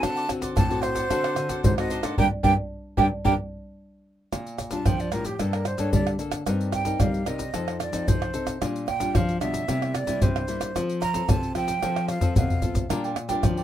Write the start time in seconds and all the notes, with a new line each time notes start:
Already playing: C4 F#4 A4
0.02 D3 D4 C5 D5 F#5 A5, pandeiro, tamborim, maracas, surdo
0.16 C5 D5 F#5, pandeiro, maracas
0.29 C4 F#4 A4, pandeiro, tamborim, maracas, surdo
0.41 C5 D5 F#5, pandeiro, maracas, surdo
0.56 A2 D4 C5 D5 F#5 A5, pandeiro, tamborim, maracas, surdo
0.70 C4 F#4 A4 C5 D5 F#5, pandeiro, maracas
0.82 C5, pandeiro, tamborim, maracas
0.95 C5 D5 F#5, pandeiro, maracas, surdo
1.10 D3 C4 D4 F#4 A4 C5 D5 F#5, pandeiro, tamborim, maracas, surdo
1.24 C5 D5 F#5, pandeiro, tamborim, maracas
1.36 D3, muted cavaquinho stroke, pandeiro, tamborim, maracas
1.49 C4 F#4 A4 C5 D5 F#5, pandeiro, maracas, surdo
1.64 G#2 C5, pandeiro, maracas, surdo
1.78 C4 F#4 A4 C5 D5 D#5 F#5, pandeiro, tamborim, maracas
1.90 D4 C5 D5 F#5, pandeiro, maracas
2.03 A#3 D4 A4 C5 D5 F#5, pandeiro, tamborim, maracas, surdo
2.18 G2 A#3 D4 G4 A#4 D5 G5, surdo
2.43 G2 A#3 D4 G4 A#4 D5 G5, surdo
2.97 G2 A#3 D4 G4 A#4 D5 G5, surdo
3.25 G2 A#3 D4 G4 A#4 D5 G5, surdo
4.32 A#2, pandeiro, tamborim, maracas, surdo
4.46 pandeiro, maracas
4.58 pandeiro, tamborim, maracas, surdo
4.71 G3 D4 F4 A5, pandeiro, maracas, surdo
4.86 F3 G5, pandeiro, tamborim, maracas, surdo
5.00 D5, pandeiro, maracas
5.12 A2 G3 D4 F4 A#4, pandeiro, tamborim, maracas
5.25 G4, pandeiro, maracas, surdo
5.39 G2 G3 A#3 D4 A4, pandeiro, tamborim, maracas, surdo
5.53 A#4, pandeiro, tamborim, maracas
5.65 C5, pandeiro, tamborim, maracas
5.78 G2 A#3 D4 A4 C#5, pandeiro, maracas, surdo
5.93 D3 G3 D5, pandeiro, maracas, surdo
6.07 pandeiro, tamborim, maracas
6.19 A#3 D4 A4, pandeiro, maracas
6.32 pandeiro, tamborim, maracas, surdo
6.46 G2 G3 C4 D#4 A#4, pandeiro, tamborim, maracas, surdo
6.61 pandeiro, maracas
6.72 G5, pandeiro, tamborim, maracas, surdo
6.85 C4 D#4 A#4, pandeiro, maracas, surdo
7.00 G3 F5, pandeiro, tamborim, maracas, surdo
7.14 pandeiro, maracas
7.26 C3 C4 D#4 A#4 D#5, pandeiro, tamborim, maracas
7.39 pandeiro, maracas, surdo
7.54 F2 F3 C4 D#4 A4, pandeiro, tamborim, maracas, surdo
7.68 pandeiro, tamborim, maracas
7.80 D5, pandeiro, tamborim, maracas
7.93 F2 C4 D#4 A4, pandeiro, maracas, surdo
8.08 C3 F3 C5, pandeiro, maracas, surdo
8.22 pandeiro, tamborim, maracas
8.34 C4 D#4 A4, pandeiro, maracas
8.47 pandeiro, tamborim, maracas, surdo
8.61 A#2 G3 D4 F4, pandeiro, tamborim, maracas, surdo
8.76 pandeiro, maracas
8.87 G5, pandeiro, tamborim, surdo
9.00 G3 D4 F4, pandeiro, maracas, surdo
9.15 F3 F5, pandeiro, tamborim, maracas, surdo
9.29 pandeiro, maracas
9.41 B2 G3 D4 F4 E5, pandeiro, tamborim, maracas
9.54 pandeiro, maracas, surdo
9.68 C3 G3 A#3 E4, pandeiro, tamborim, maracas, surdo
9.82 pandeiro, tamborim, maracas
9.94 D5, pandeiro, tamborim, maracas
10.07 C3 G3 A#3 E4, pandeiro, maracas, surdo
10.22 G2 C3 C5, pandeiro, maracas, surdo
10.36 pandeiro, tamborim, maracas
10.48 G3 A#3 E4, pandeiro, maracas
10.61 pandeiro, tamborim, maracas, surdo
10.76 F3 C4 F4 A4, pandeiro, tamborim, maracas, surdo
10.89 pandeiro, maracas
11.02 A#5, pandeiro, tamborim, maracas, surdo
11.14 C4 F4 A4, pandeiro, maracas, surdo
11.29 C3 A5, pandeiro, tamborim, maracas, surdo
11.43 pandeiro, maracas
11.55 F3 C4 F4 A4 G5, pandeiro, tamborim, maracas
11.68 pandeiro, maracas, surdo
11.83 F3 C4 F4 A4, pandeiro, tamborim, maracas, surdo
11.96 pandeiro, tamborim, maracas
12.08 F5, pandeiro, tamborim, maracas
12.21 F3 C4 F4 A4, surdo, pandeiro, maracas
12.36 B2 C3 F5, surdo, pandeiro, maracas
12.50 surdo, pandeiro, maracas
12.62 C4 F4 A4, pandeiro, maracas, surdo
12.75 pandeiro, maracas, surdo
12.89 A#2 G3 D4 F4 A#4 D5 G5, pandeiro, tamborim, maracas, surdo
13.04 A#4 D5 G5, pandeiro, maracas
13.16 muted cavaquinho stroke, pandeiro, tamborim, maracas
13.29 G3 D4 F4 A#4 D5 G5, pandeiro, maracas, surdo
13.43 F3, pandeiro, tamborim, maracas, surdo
13.57 A#4 D5 G5, pandeiro, maracas